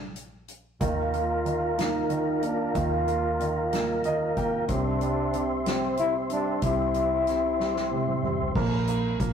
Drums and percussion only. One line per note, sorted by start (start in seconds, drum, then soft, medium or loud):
0.16 closed hi-hat soft
0.48 closed hi-hat soft
0.81 kick loud
0.81 closed hi-hat medium
1.14 closed hi-hat soft
1.46 closed hi-hat soft
1.79 snare loud
1.79 closed hi-hat medium
2.10 closed hi-hat soft
2.43 closed hi-hat soft
2.75 kick medium
2.75 closed hi-hat medium
3.08 closed hi-hat soft
3.40 closed hi-hat soft
3.73 snare medium
3.73 closed hi-hat medium
4.04 closed hi-hat soft
4.37 kick medium
4.37 closed hi-hat soft
4.69 kick medium
4.69 closed hi-hat medium
5.01 closed hi-hat soft
5.34 closed hi-hat soft
5.66 snare loud
5.66 closed hi-hat medium
5.97 closed hi-hat soft
6.30 closed hi-hat soft
6.62 kick loud
6.62 closed hi-hat medium
6.94 closed hi-hat soft
7.27 snare soft
7.27 closed hi-hat soft
7.60 snare soft
7.76 snare soft
7.91 high tom medium
8.07 mid tom medium
8.23 mid tom medium
8.39 floor tom medium
8.55 kick loud
8.55 crash loud
8.88 closed hi-hat soft
9.20 kick medium
9.20 closed hi-hat medium